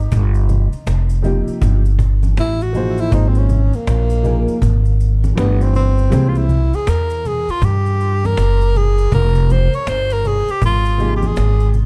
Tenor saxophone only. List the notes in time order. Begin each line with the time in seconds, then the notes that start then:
Already playing: D#4
2.40 E4
2.62 F#4
3.00 E4
3.14 D#4
3.28 C4
3.37 C#4
3.75 A#3
5.39 B3
5.62 C4
5.76 C4
6.29 F4
6.38 E4
6.75 G#4
6.89 A#4
7.27 G#4
7.50 F4
7.65 G4
8.25 A#4
8.77 G#4
9.14 A#4
9.51 C5
9.75 C#5
9.89 C5
10.13 A#4
10.27 G#4
10.50 G4
10.65 F4
11.16 G4
11.26 G#4